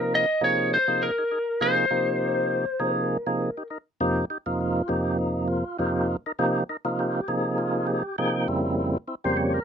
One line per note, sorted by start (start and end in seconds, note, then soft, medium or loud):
0.00 0.26 C3 medium
0.00 0.26 F3 medium
0.00 0.26 A#3 medium
0.00 0.26 D#4 medium
0.00 0.14 A#4 medium
0.00 0.26 A#4 medium
0.15 0.43 D#5 medium
0.41 0.78 C3 medium
0.41 0.78 F3 medium
0.41 0.78 A#3 medium
0.41 0.78 D#4 medium
0.41 0.79 G#4 medium
0.41 0.70 C#5 medium
0.74 1.03 C5 medium
0.88 1.11 C3 medium
0.88 1.11 F3 medium
0.88 1.11 A#3 medium
0.88 1.11 D#4 medium
0.88 1.11 G#4 medium
1.03 1.63 A#4 medium
1.18 1.24 D#4 soft
1.18 1.24 G#4 soft
1.31 1.39 D#4 soft
1.31 1.39 G#4 soft
1.61 1.86 C3 medium
1.61 1.86 F3 medium
1.61 1.86 A#3 medium
1.61 1.86 D#4 medium
1.61 1.86 G#4 loud
1.61 2.95 C5 medium
1.90 2.66 C3 medium
1.90 2.66 F3 medium
1.90 2.66 A#3 medium
1.90 2.65 D#4 medium
1.90 2.66 G4 medium
2.80 3.17 C3 medium
2.80 3.17 F3 medium
2.80 3.17 A#3 medium
2.80 3.18 D#4 medium
2.80 3.17 G#4 medium
2.95 3.67 A#4 medium
3.27 3.51 C3 medium
3.27 3.50 F3 medium
3.27 3.51 A#3 medium
3.27 3.51 D#4 medium
3.27 3.51 G#4 medium
3.57 3.63 D#4 soft
3.57 3.63 G4 soft
3.70 3.78 D#4 soft
3.70 3.78 A#4 soft
4.00 4.25 F2 loud
4.00 4.25 C3 medium
4.00 4.25 F3 medium
4.00 4.25 A#3 medium
4.00 4.25 D#4 medium
4.00 4.25 G4 loud
4.30 4.38 D#4 soft
4.30 4.38 G4 soft
4.46 4.82 F2 medium
4.46 4.82 C3 medium
4.46 4.82 F3 medium
4.46 4.82 A#3 medium
4.46 4.82 D#4 medium
4.46 4.59 F4 medium
4.61 4.89 F4 medium
4.88 5.64 F2 medium
4.88 5.64 C3 medium
4.88 5.64 F3 medium
4.88 5.64 A#3 medium
4.88 5.17 D#4 medium
4.88 5.18 G4 medium
5.19 5.48 D#4 medium
5.48 5.77 F4 medium
5.78 6.17 F2 medium
5.78 6.17 C3 medium
5.78 6.17 F3 medium
5.78 6.17 A#3 medium
5.78 6.17 D#4 medium
5.78 6.17 F4 medium
5.78 6.08 G4 medium
6.26 6.32 D#4 soft
6.26 6.32 A#4 soft
6.39 6.64 C3 loud
6.39 6.64 F3 loud
6.39 6.64 A#3 loud
6.39 6.64 D#4 loud
6.39 6.64 G4 loud
6.69 6.77 D#4 soft
6.69 6.77 A#4 soft
6.85 7.21 C3 medium
6.85 7.21 F3 medium
6.85 7.21 A#3 medium
6.85 7.21 D#4 medium
6.85 7.21 F4 medium
6.99 7.28 G4 medium
7.28 8.03 C3 medium
7.28 8.03 F3 medium
7.28 8.03 A#3 medium
7.28 8.03 D#4 medium
7.28 8.03 G#4 medium
7.58 7.87 F4 medium
7.87 8.16 G4 medium
8.18 8.48 C3 medium
8.18 8.48 F3 medium
8.18 8.47 A#3 medium
8.18 8.48 D#4 medium
8.18 8.36 G#4 medium
8.18 8.48 G5 medium
8.48 8.98 F2 medium
8.48 8.98 C#3 medium
8.48 8.98 G3 medium
8.48 8.98 A#3 medium
8.48 8.98 C4 medium
8.48 8.98 E4 medium
9.08 9.15 C4 soft
9.08 9.15 E4 soft
9.24 9.60 F2 medium
9.24 9.60 C#3 medium
9.24 9.60 G3 medium
9.24 9.60 A#3 medium
9.24 9.60 C4 medium
9.24 9.60 G4 medium
9.24 9.37 C5 medium
9.37 9.53 C#5 medium
9.54 9.64 A#4 medium